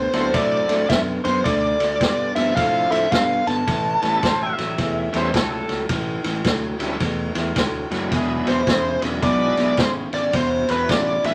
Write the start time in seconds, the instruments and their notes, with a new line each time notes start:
Already playing: clean electric guitar B3, lead electric guitar C5
0.13 fingered electric bass D2, clean electric guitar D3 B3, tonewheel organ F#3 A3 C4 D4 E4, lead electric guitar C5, snare, ride
0.33 fingered electric bass A2, clean electric guitar D3 A3, lead electric guitar D5, kick, snare, ride
0.68 fingered electric bass A2, clean electric guitar D3 A3, snare, ride
0.89 fingered electric bass F#2, clean electric guitar D3 B3, lead electric guitar E5, kick, snare, ride
1.24 fingered electric bass F#2, clean electric guitar D3 B3, lead electric guitar C5, snare, ride
1.44 fingered electric bass D2, clean electric guitar D3 A3, lead electric guitar D5, kick, snare, ride
1.80 fingered electric bass D2, clean electric guitar D3 A3, snare, ride
2.00 fingered electric bass G2, clean electric guitar D3 B3, kick, snare, ride
2.35 fingered electric bass G2, clean electric guitar D3 B3, tonewheel organ F3 A3 C4 D4 E4, lead electric guitar E5, snare, ride
2.56 fingered electric bass A2, clean electric guitar D3 A3, lead electric guitar F5, kick, snare, ride
2.90 fingered electric bass A2, clean electric guitar D3 A3, lead electric guitar E5, snare, ride
3.11 fingered electric bass G2, clean electric guitar D3 B3, lead electric guitar F5, kick, snare, ride
3.46 fingered electric bass G1, clean electric guitar D3 B3, lead electric guitar A5, snare, ride
3.67 fingered electric bass A1, clean electric guitar A2 E3, kick, snare, ride
4.02 fingered electric bass A1, clean electric guitar A2 E3, tonewheel organ G3 A3 B3 C#4 E4, snare, ride
4.22 fingered electric bass A1, clean electric guitar A2 F#3, electric slide guitar C5, kick, snare, ride
4.42 electric slide guitar E5
4.58 fingered electric bass A1, clean electric guitar A2 F#3, snare, ride
4.78 fingered electric bass E2, clean electric guitar A2 E3, kick, snare, ride
5.13 fingered electric bass E2, clean electric guitar A2 E3, tonewheel organ G3 A3 B3 C#4 E4, snare, ride
5.17 electric slide guitar C5
5.33 fingered electric bass C#2, clean electric guitar A2 F#3, electric slide guitar A4, kick, snare, ride
5.53 electric slide guitar A4
5.68 fingered electric bass C#2, clean electric guitar A2 F#3, snare, ride
5.89 fingered electric bass A1, clean electric guitar A2 E3, kick, snare, ride
6.24 fingered electric bass A1, clean electric guitar A2 E3, snare, ride
6.44 fingered electric bass D2, clean electric guitar A2 F#3, kick, snare, ride
6.79 fingered electric bass D2, clean electric guitar A2 F#3, tonewheel organ G3 A3 B3 C#4 E4, snare, ride
7.00 fingered electric bass E2, clean electric guitar A2 E3, kick, snare, ride
7.35 fingered electric bass E2, clean electric guitar A2 E3, snare, ride
7.55 fingered electric bass D2, clean electric guitar A2 F#3, kick, snare, ride
7.90 fingered electric bass F#1, clean electric guitar A2 F#3, tonewheel organ F#3 G#3 B3 D4 E4, snare, ride
8.10 fingered electric bass E1, clean electric guitar E2 B2, horn section G#3 D4 E4 G#4, kick, snare, ride
8.46 fingered electric bass E1, clean electric guitar E2 B2, lead electric guitar C5, snare, ride
8.56 horn section G#3 D4 E4 G#4
8.66 fingered electric bass E1, clean electric guitar E2 C#3, kick, snare, ride
9.02 fingered electric bass E1, clean electric guitar E2 C#3, tonewheel organ F#3 G#3 B3 D4 E4, snare, ride
9.22 fingered electric bass B1, clean electric guitar E2 B2, lead electric guitar D5, kick, snare, ride
9.57 fingered electric bass B1, clean electric guitar E2 B2, horn section G#3 D4 E4 G#4, snare, ride
9.77 fingered electric bass G#1, clean electric guitar E2 C#3, lead electric guitar C5, kick, snare, ride
10.12 fingered electric bass G#1, clean electric guitar E2 C#3, lead electric guitar D5, snare, ride
10.33 fingered electric bass E1, clean electric guitar E2 B2, horn section F#3 D4 E4 F#4, lead electric guitar C5, kick, snare, ride
10.68 fingered electric bass E1, clean electric guitar E2 B2, lead electric guitar B4, snare, ride
10.79 horn section F#3 D4 E4 F#4
10.89 fingered electric bass A1, clean electric guitar E2 C#3, lead electric guitar D5, kick, snare, ride
11.23 fingered electric bass A1, clean electric guitar E2 C#3, tonewheel organ F#3 G#3 B3 D4 E4, lead electric guitar E5, snare, ride